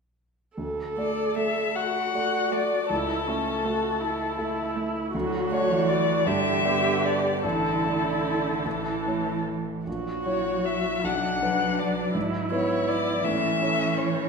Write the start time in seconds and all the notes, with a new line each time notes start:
0.57 D2 A4
0.97 A3 A4 D5
1.36 A3 E5
1.75 F#4 F#5
2.14 A3 A4 D5
2.51 A3 D5
2.90 C#2 E4 A4
3.27 A3 C#4 A4 E5
3.65 A3 F#4
4.01 E4
4.38 A3 A4 E5
4.76 A3
5.13 D2 F#3 F#4
5.50 A3 F#4 C#5 D5
5.69 E3
5.88 D5
6.26 G2 D3 G4 E5
6.65 B3 G4 D5
7.05 D5
7.43 A1 D3 E4 A4
7.84 A3 E4 D5
8.66 A1 E3
9.07 A3 E4 C#5
9.87 A#1 F#3 F#4
10.25 F#3 E4 C#5
10.65 E5
11.04 B1 D4 F#5
11.42 F#3 D4 B4
11.79 D5
12.15 G#2 E4
12.51 B3 E4 B4 C#5
12.88 D5
13.24 A2 E3 C#4 E5
13.62 A3 E4 C#5
13.98 C#5